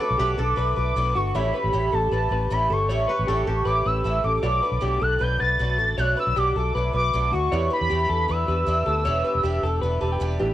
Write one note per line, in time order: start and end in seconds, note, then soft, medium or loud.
0.00 0.19 A3 medium
0.00 0.20 D4 medium
0.00 1.31 F#4 medium
0.00 0.20 F#4 medium
0.00 0.38 A4 medium
0.00 0.19 B4 medium
0.00 0.77 D6 loud
0.10 0.18 B1 medium
0.18 0.35 B1 loud
0.18 0.38 B2 medium
0.18 0.39 F#3 medium
0.18 0.39 A3 medium
0.18 0.39 D4 medium
0.18 0.38 F#4 medium
0.18 0.38 G4 medium
0.18 1.97 B4 loud
0.18 0.37 B4 medium
0.38 0.54 B1 loud
0.38 0.55 A3 medium
0.38 0.56 D4 medium
0.38 0.57 F#4 medium
0.38 0.57 A4 medium
0.38 2.29 A4 medium
0.38 0.57 B4 medium
0.56 0.73 B1 loud
0.56 0.76 A3 medium
0.56 0.77 D4 medium
0.56 0.76 F#4 medium
0.56 0.75 B4 loud
0.56 0.75 B4 medium
0.76 0.93 B1 loud
0.76 0.96 A3 medium
0.76 0.96 D4 soft
0.76 0.96 F#4 medium
0.76 0.96 B4 medium
0.76 1.13 B4 medium
0.76 1.18 D6 loud
0.96 1.12 B1 loud
0.96 1.15 B2 medium
0.96 1.16 F#3 medium
0.96 1.16 A3 medium
0.96 1.15 D4 medium
0.96 1.14 F#4 medium
0.96 1.14 B4 medium
1.15 1.31 G1 medium
1.15 1.35 A3 soft
1.15 1.35 D4 soft
1.15 1.35 F#4 medium
1.15 1.34 B4 medium
1.15 1.35 C#6 medium
1.35 1.51 A1 loud
1.35 1.54 A2 medium
1.35 1.54 E3 medium
1.35 1.54 G3 medium
1.35 1.54 C#4 medium
1.35 4.39 G4 medium
1.35 1.52 G4 medium
1.35 4.39 A4 medium
1.35 1.54 C#5 loud
1.35 4.40 C#5 medium
1.35 4.39 E5 medium
1.35 1.96 B5 loud
1.53 1.72 G3 soft
1.53 1.73 C#4 medium
1.53 1.73 G4 medium
1.53 1.73 B4 medium
1.64 1.72 A1 loud
1.73 1.90 A1 loud
1.73 1.92 A2 medium
1.73 1.93 E3 medium
1.73 1.93 G3 medium
1.73 1.92 C#4 medium
1.73 1.92 G4 medium
1.73 1.91 G4 medium
1.92 2.09 A1 loud
1.92 2.11 G3 soft
1.92 2.12 C#4 soft
1.92 2.11 G4 medium
1.92 2.12 A4 medium
1.92 2.54 A5 loud
2.11 2.27 A1 loud
2.11 2.31 E3 medium
2.11 2.31 G3 medium
2.11 2.30 C#4 medium
2.11 2.28 G4 medium
2.11 2.31 B4 medium
2.29 2.47 A1 loud
2.29 2.50 G3 soft
2.29 2.50 C#4 medium
2.29 2.49 G4 soft
2.29 2.68 B4 medium
2.50 2.67 A1 medium
2.50 2.70 A2 medium
2.50 2.70 E3 medium
2.50 2.70 G3 medium
2.50 2.70 C#4 medium
2.50 2.69 G4 medium
2.50 2.74 B5 loud
2.70 2.90 G1 medium
2.70 2.89 G3 soft
2.70 2.90 C#4 medium
2.70 2.89 G4 medium
2.70 2.89 A4 medium
2.70 3.67 C#6 loud
2.89 3.05 A1 loud
2.89 3.08 A2 medium
2.89 3.09 E3 loud
2.89 3.09 G3 medium
2.89 3.09 C#4 medium
2.89 3.08 G4 medium
2.89 3.07 C#5 loud
3.08 3.28 G3 medium
3.08 3.28 G4 medium
3.08 3.27 B4 medium
3.08 4.87 B4 loud
3.19 3.27 A1 loud
3.27 3.44 A1 medium
3.27 3.47 A2 medium
3.27 3.48 E3 medium
3.27 3.48 G3 medium
3.27 3.47 C#4 medium
3.27 3.47 G4 medium
3.27 3.46 G4 medium
3.27 5.18 A4 loud
3.47 3.63 A1 loud
3.47 3.65 G3 soft
3.47 3.66 C#4 medium
3.47 3.66 G4 medium
3.47 5.51 G4 medium
3.47 3.66 A4 medium
3.65 3.82 A1 medium
3.65 3.85 E3 medium
3.65 3.86 G3 medium
3.65 3.85 C#4 medium
3.65 3.84 G4 medium
3.65 3.84 B4 loud
3.65 3.88 D6 loud
3.85 4.02 A1 loud
3.85 4.04 G3 soft
3.85 4.05 C#4 soft
3.85 4.04 G4 soft
3.85 4.22 B4 medium
3.85 4.04 E6 loud
4.04 4.21 A1 loud
4.04 4.24 A2 medium
4.04 4.24 E3 medium
4.04 4.24 G3 medium
4.04 4.23 C#4 medium
4.04 4.22 G4 medium
4.04 4.23 E6 loud
4.24 4.40 A1 medium
4.24 4.43 G3 soft
4.24 4.44 C#4 medium
4.24 4.43 G4 medium
4.24 4.43 A4 medium
4.24 5.04 D6 medium
4.42 4.59 B1 loud
4.42 4.62 B2 medium
4.42 4.62 F#3 medium
4.42 4.63 A3 medium
4.42 4.63 D4 medium
4.42 7.47 F#4 medium
4.42 4.61 F#4 medium
4.42 7.47 A4 medium
4.42 7.47 B4 medium
4.42 4.62 C#5 loud
4.42 7.47 D5 medium
4.63 4.80 A3 medium
4.63 4.81 D4 medium
4.63 4.81 F#4 medium
4.63 4.82 B4 medium
4.72 4.80 B1 medium
4.81 4.98 B1 loud
4.81 5.00 B2 medium
4.81 5.01 F#3 medium
4.81 5.01 A3 medium
4.81 5.00 D4 medium
4.81 4.98 F#4 loud
4.81 5.01 G4 medium
5.00 5.17 B1 loud
5.00 5.19 A3 soft
5.00 5.20 D4 soft
5.00 5.20 F#4 medium
5.00 5.21 A4 medium
5.00 5.24 F#6 loud
5.19 5.37 B1 loud
5.19 5.39 F#3 medium
5.19 5.39 A3 medium
5.19 5.40 D4 medium
5.19 5.38 F#4 medium
5.19 5.39 B4 medium
5.19 5.40 G6 loud
5.39 5.56 B1 loud
5.39 5.59 A3 soft
5.39 5.59 D4 soft
5.39 5.58 F#4 soft
5.39 5.78 B4 medium
5.39 6.00 A6 loud
5.59 5.79 B1 loud
5.59 5.78 B2 medium
5.59 5.79 F#3 medium
5.59 5.79 A3 medium
5.59 5.79 D4 medium
5.59 5.78 F#4 medium
5.78 5.94 A1 medium
5.78 5.98 A3 soft
5.78 5.98 D4 medium
5.78 5.98 F#4 medium
5.78 5.97 A4 medium
5.98 6.13 B1 loud
5.98 6.17 B2 medium
5.98 6.17 F#3 medium
5.98 6.17 A3 medium
5.98 6.17 D4 loud
5.98 6.16 F#4 medium
5.98 6.17 C#5 loud
5.98 6.17 F#6 loud
6.17 6.36 A3 medium
6.17 6.36 D4 medium
6.17 6.36 F#4 medium
6.17 6.36 B4 medium
6.17 6.39 E6 loud
6.27 6.34 B1 medium
6.36 6.52 B1 loud
6.36 6.55 B2 medium
6.36 6.56 F#3 medium
6.36 6.56 A3 medium
6.36 6.56 D4 medium
6.36 6.55 F#4 medium
6.36 6.55 G4 medium
6.36 6.56 D6 loud
6.56 6.71 B1 loud
6.56 6.75 A3 soft
6.56 6.76 D4 medium
6.56 6.75 F#4 medium
6.56 6.75 A4 medium
6.56 6.92 D6 loud
6.75 6.91 B1 medium
6.75 6.94 F#3 medium
6.75 6.95 A3 medium
6.75 6.94 D4 medium
6.75 6.92 F#4 medium
6.75 6.93 B4 loud
6.93 7.10 B1 loud
6.93 7.13 A3 soft
6.93 7.13 D4 medium
6.93 7.13 F#4 medium
6.93 7.30 B4 medium
6.93 7.31 D6 loud
7.13 7.29 B1 loud
7.13 7.32 B2 medium
7.13 7.33 F#3 medium
7.13 7.33 A3 medium
7.13 7.33 D4 medium
7.13 7.32 F#4 medium
7.33 7.48 D2 medium
7.33 7.52 A3 medium
7.33 7.52 D4 medium
7.33 7.52 F#4 medium
7.33 7.69 C#6 medium
7.51 7.68 E2 loud
7.51 7.71 E3 medium
7.51 7.71 B3 medium
7.51 7.70 D4 medium
7.51 10.36 E4 medium
7.51 10.36 G4 medium
7.51 7.69 G4 medium
7.51 10.36 B4 medium
7.51 7.71 C#5 loud
7.51 10.36 D5 medium
7.70 7.89 B3 soft
7.70 7.90 D4 medium
7.70 7.90 G4 medium
7.70 7.90 B4 medium
7.70 8.32 B5 loud
7.81 7.89 E2 loud
7.89 8.07 E2 loud
7.89 8.09 E3 medium
7.89 8.09 B3 medium
7.89 8.10 D4 medium
7.89 8.09 G4 medium
7.89 8.08 G4 medium
8.09 8.25 E2 loud
8.09 8.28 B3 soft
8.09 8.29 D4 soft
8.09 8.28 G4 medium
8.09 8.28 A4 medium
8.28 8.45 E2 loud
8.28 8.47 E3 medium
8.28 8.48 B3 medium
8.28 8.48 D4 medium
8.28 8.47 G4 medium
8.28 8.47 B4 loud
8.28 10.22 E6 loud
8.48 8.64 E2 loud
8.48 8.66 B3 soft
8.48 8.67 D4 medium
8.48 8.67 G4 medium
8.48 8.84 B4 medium
8.66 8.83 E2 loud
8.66 8.86 E3 medium
8.66 8.86 B3 medium
8.66 8.86 D4 medium
8.66 8.84 G4 medium
8.85 9.07 D2 medium
8.85 9.05 B3 soft
8.85 9.05 D4 medium
8.85 9.05 G4 medium
8.85 9.05 A4 medium
9.05 9.21 E1 loud
9.05 9.24 E3 loud
9.05 9.25 B3 medium
9.05 9.24 D4 loud
9.05 9.23 G4 loud
9.05 9.24 C#5 loud
9.24 9.43 B3 medium
9.24 9.44 D4 medium
9.24 9.43 G4 medium
9.24 9.44 B4 medium
9.35 9.42 E1 medium
9.43 9.60 E1 loud
9.43 9.63 E3 medium
9.43 9.63 B3 medium
9.43 9.63 D4 medium
9.43 9.63 G4 medium
9.43 9.62 G4 loud
9.63 9.79 E1 loud
9.63 9.82 B3 medium
9.63 9.83 D4 medium
9.63 9.82 G4 medium
9.63 9.81 A4 medium
9.81 9.98 E1 loud
9.81 10.02 E3 medium
9.81 10.02 B3 medium
9.81 10.01 D4 medium
9.81 10.00 B4 loud
9.86 9.99 G4 medium
10.01 10.17 E1 medium
10.01 10.19 B3 medium
10.01 10.20 D4 medium
10.01 10.20 G4 medium
10.01 10.37 B4 medium
10.01 10.10 A5 medium
10.12 10.20 G5 medium
10.20 10.36 E1 loud
10.20 10.39 E3 medium
10.20 10.40 B3 medium
10.20 10.39 D4 loud
10.20 10.38 G4 loud
10.20 10.39 G5 medium
10.39 10.54 A1 loud
10.39 10.54 B3 medium
10.39 10.54 D4 medium
10.39 10.54 E4 medium
10.39 10.54 G4 medium
10.39 10.54 B4 medium
10.39 10.54 D5 medium
10.39 10.54 E5 medium